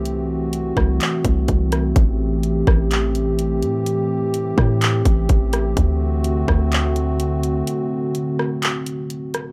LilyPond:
<<
  \new Staff \with { instrumentName = "Analog synth pad" } { \time 4/4 \key a \dorian \tempo 4 = 126 << { fis'1 | g'1~ | g'1 | fis'1~ |
fis'1 | } \\ { <e a c'>1~ | <e a c'>1~ | <e a c'>1 | <d a c'>1~ |
<d a c'>1 | } >> }
  \new Staff \with { instrumentName = "808-style bass" } { \clef bass \time 4/4 \key a \dorian c,4. c,8 r8 c,8 c,4 | a,,4. a,,2 a,8~ | a,4. a,4 a,,8 a,,4 | d,4. d,2~ d,8 |
r1 | }
  \new DrumStaff \with { instrumentName = "Drums" } \drummode { \time 4/4 hh4 hh8 <bd ss>8 <hc hh>8 <hh bd>8 <hh bd>8 <hh ss>8 | <hh bd>4 hh8 <bd ss>8 <hc hh>8 hh8 hh8 hh8 | hh4 hh8 <bd ss>8 <hc hh>8 <hh bd>8 <hh bd>8 <hh ss>8 | <hh bd>4 hh8 <bd ss>8 <hc hh>8 hh8 hh8 hh8 |
hh4 hh8 ss8 <hc hh>8 hh8 hh8 <hh ss>8 | }
>>